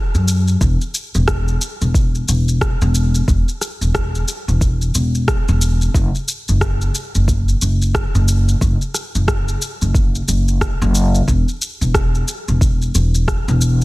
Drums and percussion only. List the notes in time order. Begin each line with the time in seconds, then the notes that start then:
0.15 shaker
0.28 shaker
0.48 shaker
0.61 kick, shaker
0.81 shaker
0.94 shaker
1.15 shaker
1.28 kick, cross-stick, shaker
1.48 shaker
1.61 shaker
1.81 shaker
1.94 kick, shaker
2.15 shaker
2.28 shaker
2.48 shaker
2.61 kick, cross-stick, shaker
2.82 shaker
2.95 shaker
3.15 shaker
3.28 kick, shaker
3.48 shaker
3.61 cross-stick, shaker
3.82 shaker
3.95 kick, cross-stick, shaker
4.15 shaker
4.28 shaker
4.48 shaker
4.61 kick, shaker
4.82 shaker
4.95 shaker
5.15 shaker
5.28 kick, cross-stick, shaker
5.48 shaker
5.61 shaker
5.81 shaker
5.95 kick, shaker
6.15 shaker
6.28 shaker
6.48 shaker
6.61 kick, cross-stick, shaker
6.81 shaker
6.95 shaker
7.15 shaker
7.28 kick, shaker
7.48 shaker
7.62 shaker
7.82 shaker
7.95 kick, cross-stick, shaker
8.15 shaker
8.28 shaker
8.48 shaker
8.61 kick, shaker
8.81 shaker
8.94 cross-stick, shaker
9.15 shaker
9.28 kick, cross-stick, shaker
9.48 shaker
9.62 shaker
9.82 shaker
9.95 kick, shaker
10.15 shaker
10.28 shaker
10.48 shaker
10.61 kick, cross-stick, shaker
10.82 shaker
10.95 shaker
11.15 shaker
11.28 kick, shaker
11.48 shaker
11.62 shaker
11.82 shaker
11.94 kick, cross-stick, shaker
12.15 shaker
12.28 shaker
12.48 shaker
12.61 kick, shaker
12.82 shaker
12.95 shaker
13.15 shaker
13.28 kick, cross-stick, shaker
13.48 shaker
13.61 shaker